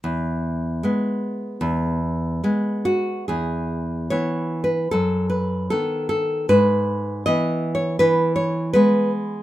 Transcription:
\new Staff \with { instrumentName = "Nylon-string guitar" } { \time 2/4 \key e \major \tempo 4 = 76 << { r2 | r4. fis'8 | gis'4 \tuplet 3/2 { cis''4 b'8 } | a'8 b'8 a'8 a'8 |
b'4 \tuplet 3/2 { dis''4 cis''8 } | b'8 cis''8 b'8 r8 | } \\ { e,4 <gis b>4 | e,4 <gis b>4 | e,4 <e b>4 | fis,4 <dis b>4 |
gis,4 <e b>4 | e4 <gis b>4 | } >> }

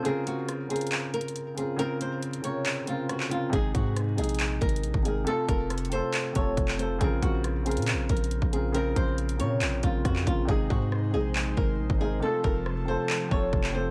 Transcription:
<<
  \new Staff \with { instrumentName = "Nylon-string guitar" } { \time 4/4 \key bes \minor \tempo 4 = 138 aes'8 ges'8 r8 aes'4 bes'4 aes'8 | bes'8 c''8 r8 des''4 f'8 ges'8 f'8 | aes'8 ges'8 r8 aes'4 bes'4 aes'8 | a'8 bes'8 r8 c''4 des''4 c''8 |
aes'8 ges'8 r8 aes'4 bes'4 aes'8 | bes'8 c''8 r8 des''4 f'8 ges'8 f'8 | aes'8 ges'8 r8 aes'4 bes'4 aes'8 | a'8 bes'8 r8 c''4 des''4 c''8 | }
  \new Staff \with { instrumentName = "Grand piano" } { \time 4/4 \key bes \minor <des c' f' bes'>4 r8 <des c' f' bes'>4. r8 <des c' f' bes'>8 | <des c' f' bes'>4 r8 <c des f' bes'>4 <des c' f' bes'>4 <des c' f' bes'>8 | <c aes ees' aes'>4 r8 <c aes ees' aes'>4. r8 <c aes ees' bes'>8 | <c a f' a'>4 r8 <c a f' a'>4 <c a f' a'>4 <c a f' a'>8 |
<des c' f' bes'>4 r8 <des c' f' bes'>4. r8 <des c' f' bes'>8 | <des c' f' bes'>4 r8 <c des f' bes'>4 <des c' f' bes'>4 <des c' f' bes'>8 | <c aes ees' aes'>4 r8 <c aes ees' aes'>4. r8 <c aes ees' bes'>8 | <c a f' a'>4 r8 <c a f' a'>4 <c a f' a'>4 <c a f' a'>8 | }
  \new Staff \with { instrumentName = "Analog synth pad" } { \time 4/4 \key bes \minor r1 | r1 | r1 | r1 |
r1 | r1 | <aes ees' c''>1 | <c f a'>1 | }
  \new Staff \with { instrumentName = "808-style bass" } { \clef bass \time 4/4 \key bes \minor r1 | r1 | aes,,8 aes,4 bes,,4 aes,,8 bes,,16 aes,,8. | r8 f,,4~ f,,16 r8. f,,8 f,,4 |
bes,,8 bes,,4~ bes,,16 bes,16. bes,,16. bes,,8. bes,,8.~ | bes,,8 bes,,4 bes,8 bes,,8 bes,,8 f,8 bes,,8 | aes,,8 aes,4 bes,,4 aes,,8 bes,,16 aes,,8. | r8 f,,4~ f,,16 r8. f,,8 f,,4 | }
  \new DrumStaff \with { instrumentName = "Drums" } \drummode { \time 4/4 hh8 hh8 <hh ss>8 hh32 hh32 hh32 hh32 \tuplet 3/2 { <hc hh>16 r16 r16 hh16 hh16 hh16 } hh8 hh8 | hh8 hh8 hh16 hh16 hh8 <hc hh>8 hh8 <hh ss>16 hc16 hh8 | <hh bd>8 <hh bd>8 <hh ss>8 hh32 hh32 hh32 hh32 \tuplet 3/2 { <hc hh>16 r16 r16 <hh bd>16 hh16 hh16 } hh16 bd16 hh8 | hh8 <hh bd>8 \tuplet 3/2 { <hh ss>16 hh16 hh16 hh16 r16 r16 } <hc hh>8 <hh bd>8 <hh bd>16 hc16 hh8 |
<hh bd>8 <hh bd>8 <hh ss>8 hh32 hh32 hh32 hh32 \tuplet 3/2 { <hc hh>16 r16 r16 <hh bd>16 hh16 hh16 } hh16 bd16 hh8 | hh8 <hh bd>8 hh16 hh16 hh8 <hc hh>8 <hh bd>8 <hh bd ss>16 hc16 <hh bd>8 | bd8 bd8 ss4 hc8 bd8 r16 bd8. | r8 bd8 ss4 hc8 bd8 bd16 hc8. | }
>>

